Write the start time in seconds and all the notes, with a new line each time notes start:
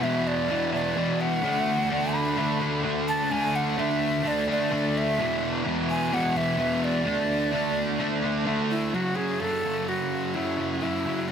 0.02 E2 B2 E3 E5
0.27 D5
0.49 E2 B2 E3
0.72 B2 E3 D5
0.96 E2 B2 E3
1.21 F#5
1.42 D3 A3 D4
1.90 D3 A3 D4
2.14 B5
2.37 D3 A3 D4
2.60 A3 D4
2.83 D3 A3 D4
3.09 A5
3.30 D3 A3 D4 G#5
3.56 F#5
3.77 D3 A3 D4 E5
4.23 D3 A3 D4
4.28 D5
4.48 A3 D4 D5
4.70 D3 A3 D4
4.98 E5
5.17 E2 B2 E3
5.64 E2 B2 E3
5.90 G#5
6.12 E2 B2 E3 F#5
6.35 B2 E3 E5
6.57 E2 B2 E3
6.84 D5
7.05 D3 A3 D4
7.52 D3 A3 D4
7.99 D3 A3 D4
8.22 A3 D4
8.45 D3 A3 D4
8.71 E4
8.92 F#2 C#3 F#3 F#4
9.15 C#3 F#3 G#4
9.40 F#2 C#3 F#3 A4
9.63 C#3 F#3
9.88 F#4
10.34 F#2 C#3 F#3 E4
10.58 C#3 F#3
10.80 F#2 C#3 E4
10.84 F#3
11.06 C#3 F#3
11.28 F#4